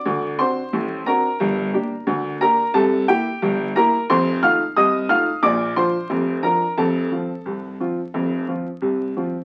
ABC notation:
X:1
M:2/4
L:1/8
Q:1/4=89
K:Fmix
V:1 name="Upright piano"
[dd'] [cc']2 [Bb]- | [Bb]3 [Bb] | [Aa] [Gg]2 [Bb] | [cc'] [ff'] [ee'] [ff'] |
[dd'] [cc']2 [Bb] | [Aa]4- | [Aa]2 z2 |]
V:2 name="Upright piano"
[D,,D,] [CD^F] [A,,,A,,] [CDF] | [G,,,G,,] [B,DG] [D,,D,] [B,DG] | [C,,C,] [B,=E] [G,,,G,,] [B,EG] | [F,,,F,,] [A,EF] [C,,C,] [A,EF] |
[B,,,B,,] [F,DF] [F,,,F,,] [F,DF] | [F,,,F,,] [F,CF] [C,,C,] [F,CF] | [F,,,F,,] [F,CF] [C,,C,] [F,CF] |]